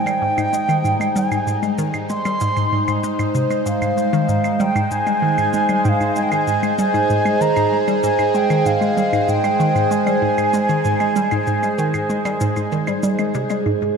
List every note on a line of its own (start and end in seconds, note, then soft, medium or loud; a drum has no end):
0.00 3.97 G3 medium
0.00 13.97 G#3 medium
0.00 13.97 D#4 medium
0.00 13.97 C5 medium
0.00 1.16 G5 loud
0.06 0.12 G3 loud
0.06 claves medium
0.06 shaker soft
0.22 0.28 G#2 loud
0.37 0.47 G#2 medium
0.37 claves medium
0.37 shaker soft
0.53 0.68 G#3 medium
0.53 shaker medium
0.69 0.84 D#3 loud
0.69 claves soft
0.69 shaker soft
0.85 0.94 G#2 medium
0.85 shaker medium
1.00 1.10 G#3 medium
1.00 claves medium
1.00 shaker soft
1.16 1.22 G3 loud
1.16 1.75 G#5 medium
1.16 shaker medium
1.31 1.37 G#2 loud
1.31 claves medium
1.31 shaker soft
1.47 1.57 G#2 medium
1.47 shaker medium
1.63 1.77 G#3 medium
1.63 claves soft
1.63 shaker soft
1.78 1.93 D#3 loud
1.78 shaker medium
1.94 2.04 G#2 medium
1.94 claves medium
1.94 shaker soft
2.09 2.20 G#3 medium
2.09 3.31 C6 loud
2.09 shaker medium
2.25 2.31 G3 loud
2.25 claves medium
2.25 shaker soft
2.41 2.47 G#2 loud
2.41 shaker medium
2.57 2.67 G#2 medium
2.57 claves soft
2.57 shaker soft
2.72 2.82 G#2 medium
2.88 2.98 G#2 medium
2.88 claves medium
2.88 shaker soft
3.03 3.13 G#3 medium
3.03 shaker medium
3.19 3.25 G#2 medium
3.19 claves medium
3.19 shaker soft
3.35 3.45 C3 medium
3.35 shaker medium
3.50 3.56 G#3 medium
3.50 claves soft
3.50 shaker soft
3.66 3.72 G#2 medium
3.66 4.62 F5 medium
3.66 shaker medium
3.78 13.97 G#4 medium
3.82 3.91 G#2 medium
3.82 claves medium
3.82 shaker soft
3.97 4.12 G#3 medium
3.97 shaker medium
4.13 4.28 D#3 loud
4.13 claves soft
4.13 shaker soft
4.29 4.38 G#2 medium
4.29 shaker medium
4.44 4.54 G#3 medium
4.44 claves medium
4.44 shaker soft
4.60 4.66 G3 loud
4.60 4.93 G5 medium
4.60 shaker medium
4.75 4.81 G#2 loud
4.75 claves medium
4.75 shaker soft
4.91 5.01 G#2 medium
4.91 5.86 G#5 loud
4.91 shaker medium
5.07 5.21 G#3 medium
5.07 claves soft
5.07 shaker soft
5.22 5.37 D#3 loud
5.38 5.48 G#2 medium
5.38 claves medium
5.38 shaker soft
5.53 5.63 G#3 medium
5.53 shaker medium
5.69 5.75 G3 medium
5.69 claves medium
5.69 shaker soft
5.85 5.91 G#2 loud
5.85 5.90 G5 medium
5.85 shaker medium
5.89 6.16 F5 medium
6.00 6.10 G#2 medium
6.00 claves soft
6.00 shaker soft
6.16 6.31 G#3 medium
6.16 6.25 G#5 loud
6.16 shaker medium
6.23 6.32 G5 medium
6.31 6.46 D#3 loud
6.31 6.78 G#5 loud
6.31 claves medium
6.31 shaker soft
6.47 6.57 G#2 medium
6.47 shaker medium
6.63 6.73 G#3 medium
6.63 claves medium
6.63 shaker soft
6.79 6.84 G3 loud
6.79 7.43 G#5 loud
6.79 shaker medium
6.94 7.00 G#2 loud
6.94 claves soft
6.94 shaker soft
7.10 7.20 G#2 medium
7.10 shaker medium
7.25 7.40 G#3 medium
7.25 claves medium
7.25 shaker soft
7.41 7.56 D#3 medium
7.41 7.77 A#5 loud
7.41 shaker medium
7.56 7.66 G#2 medium
7.56 claves medium
7.56 shaker soft
7.72 7.82 G#3 medium
7.88 7.94 G3 medium
7.88 claves soft
7.88 shaker soft
8.03 8.09 G#2 loud
8.03 8.37 G#5 loud
8.03 shaker medium
8.19 8.29 G#2 medium
8.19 claves medium
8.19 shaker soft
8.35 8.49 G#3 medium
8.35 8.68 G5 medium
8.35 shaker medium
8.50 8.65 D#3 loud
8.50 claves medium
8.50 shaker soft
8.66 8.76 G#2 medium
8.66 9.31 F5 loud
8.66 shaker medium
8.81 8.91 G#3 medium
8.81 claves soft
8.81 shaker soft
8.97 9.03 G3 loud
8.97 shaker medium
9.13 9.19 G#2 medium
9.13 claves medium
9.13 shaker soft
9.28 9.38 G#2 medium
9.28 9.93 G5 loud
9.28 shaker medium
9.44 9.59 G#3 medium
9.44 claves medium
9.44 shaker soft
9.60 9.74 D#3 medium
9.60 shaker medium
9.75 9.85 G#2 medium
9.75 claves soft
9.75 shaker soft
9.91 10.01 G#3 medium
9.91 13.04 G#5 loud
9.91 shaker medium
10.07 10.12 G3 loud
10.07 claves medium
10.07 shaker soft
10.22 10.28 G#2 loud
10.38 10.48 G#2 medium
10.38 claves medium
10.38 shaker soft
10.53 10.68 G#3 medium
10.53 shaker medium
10.69 10.84 D#3 loud
10.69 claves soft
10.69 shaker soft
10.85 10.95 G#2 medium
10.85 shaker medium
11.00 11.10 G#3 medium
11.00 claves medium
11.00 shaker soft
11.16 11.22 G3 loud
11.16 shaker medium
11.31 11.38 G#2 medium
11.31 claves medium
11.31 shaker soft
11.47 11.57 G#2 medium
11.47 shaker medium
11.63 11.78 G#3 medium
11.63 claves soft
11.63 shaker soft
11.78 11.93 D#3 loud
11.78 shaker medium
11.94 12.04 G#2 medium
11.94 claves medium
11.94 shaker soft
12.10 12.19 G#3 medium
12.10 shaker medium
12.25 12.31 G3 loud
12.25 claves medium
12.25 shaker soft
12.41 12.47 G#2 loud
12.41 shaker medium
12.56 12.66 G#2 medium
12.56 claves soft
12.56 shaker soft
12.72 12.87 D#3 loud
12.72 shaker soft
12.87 12.94 G3 medium
12.87 claves medium
12.87 shaker soft
13.03 13.13 G3 loud
13.03 shaker medium
13.19 13.34 G#3 medium
13.19 claves medium
13.19 shaker soft
13.34 13.45 C3 loud
13.34 shaker medium
13.50 13.65 G#3 loud
13.50 claves soft
13.50 shaker soft
13.66 13.72 G#2 loud
13.82 13.91 G#2 medium